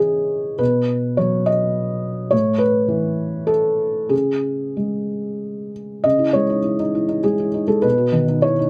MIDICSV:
0, 0, Header, 1, 2, 480
1, 0, Start_track
1, 0, Key_signature, 4, "minor"
1, 0, Tempo, 582524
1, 492, Time_signature, 3, 2, 24, 8
1, 2880, Tempo, 636943
1, 4800, Tempo, 597610
1, 6933, End_track
2, 0, Start_track
2, 0, Title_t, "Felt piano"
2, 0, Program_c, 0, 0
2, 0, Control_c, 0, 64, 127
2, 0, Note_on_c, 0, 49, 39
2, 0, Note_on_c, 0, 52, 29
2, 0, Note_on_c, 0, 68, 61
2, 0, Note_on_c, 0, 73, 55
2, 0, Note_on_c, 0, 75, 63
2, 451, Note_off_c, 0, 49, 0
2, 480, Note_off_c, 0, 68, 0
2, 482, Note_on_c, 0, 71, 62
2, 485, Note_off_c, 0, 52, 0
2, 487, Note_on_c, 0, 47, 39
2, 508, Control_c, 0, 64, 0
2, 514, Note_off_c, 0, 75, 0
2, 516, Note_off_c, 0, 73, 0
2, 661, Control_c, 0, 64, 127
2, 966, Note_on_c, 0, 73, 58
2, 971, Note_off_c, 0, 71, 0
2, 977, Note_on_c, 0, 54, 32
2, 1203, Note_on_c, 0, 75, 61
2, 1207, Note_off_c, 0, 73, 0
2, 1881, Note_off_c, 0, 47, 0
2, 1900, Note_on_c, 0, 73, 71
2, 1912, Note_off_c, 0, 75, 0
2, 1914, Note_on_c, 0, 45, 42
2, 1917, Note_off_c, 0, 54, 0
2, 1929, Control_c, 0, 64, 0
2, 2076, Control_c, 0, 64, 127
2, 2129, Note_on_c, 0, 71, 67
2, 2145, Note_off_c, 0, 73, 0
2, 2375, Note_on_c, 0, 52, 34
2, 2858, Note_on_c, 0, 69, 66
2, 2869, Note_off_c, 0, 71, 0
2, 3319, Note_off_c, 0, 45, 0
2, 3331, Note_on_c, 0, 68, 53
2, 3334, Note_on_c, 0, 49, 36
2, 3340, Note_off_c, 0, 69, 0
2, 3343, Note_off_c, 0, 52, 0
2, 3365, Control_c, 0, 64, 0
2, 3484, Control_c, 0, 64, 127
2, 3838, Note_on_c, 0, 56, 28
2, 4556, Note_off_c, 0, 68, 0
2, 4762, Note_off_c, 0, 49, 0
2, 4795, Note_on_c, 0, 75, 71
2, 4799, Note_off_c, 0, 56, 0
2, 4802, Note_on_c, 0, 49, 44
2, 4815, Control_c, 0, 64, 0
2, 4916, Note_on_c, 0, 64, 29
2, 4946, Control_c, 0, 64, 127
2, 5033, Note_on_c, 0, 73, 61
2, 5040, Note_off_c, 0, 75, 0
2, 5044, Note_on_c, 0, 56, 35
2, 5114, Note_off_c, 0, 64, 0
2, 5164, Note_on_c, 0, 63, 35
2, 5238, Note_off_c, 0, 56, 0
2, 5276, Note_on_c, 0, 64, 28
2, 5358, Note_off_c, 0, 63, 0
2, 5401, Note_off_c, 0, 64, 0
2, 5404, Note_on_c, 0, 63, 36
2, 5527, Note_on_c, 0, 64, 31
2, 5594, Note_off_c, 0, 63, 0
2, 5637, Note_on_c, 0, 63, 35
2, 5715, Note_off_c, 0, 64, 0
2, 5756, Note_off_c, 0, 73, 0
2, 5758, Note_on_c, 0, 68, 65
2, 5763, Note_on_c, 0, 56, 35
2, 5830, Note_off_c, 0, 63, 0
2, 5887, Note_on_c, 0, 64, 33
2, 5954, Note_off_c, 0, 56, 0
2, 6002, Note_on_c, 0, 63, 35
2, 6077, Note_off_c, 0, 64, 0
2, 6111, Note_on_c, 0, 56, 35
2, 6113, Note_on_c, 0, 69, 63
2, 6121, Note_off_c, 0, 68, 0
2, 6196, Note_off_c, 0, 63, 0
2, 6213, Note_off_c, 0, 49, 0
2, 6227, Note_on_c, 0, 71, 73
2, 6236, Note_on_c, 0, 47, 46
2, 6238, Note_off_c, 0, 56, 0
2, 6239, Note_off_c, 0, 69, 0
2, 6260, Control_c, 0, 64, 0
2, 6353, Note_on_c, 0, 66, 36
2, 6410, Control_c, 0, 64, 127
2, 6469, Note_on_c, 0, 51, 35
2, 6550, Note_off_c, 0, 66, 0
2, 6601, Note_on_c, 0, 63, 42
2, 6668, Note_off_c, 0, 51, 0
2, 6711, Note_on_c, 0, 73, 74
2, 6715, Note_off_c, 0, 71, 0
2, 6721, Note_on_c, 0, 64, 35
2, 6793, Note_off_c, 0, 63, 0
2, 6841, Note_off_c, 0, 64, 0
2, 6845, Note_on_c, 0, 63, 40
2, 6933, Note_off_c, 0, 47, 0
2, 6933, Note_off_c, 0, 63, 0
2, 6933, Note_off_c, 0, 73, 0
2, 6933, End_track
0, 0, End_of_file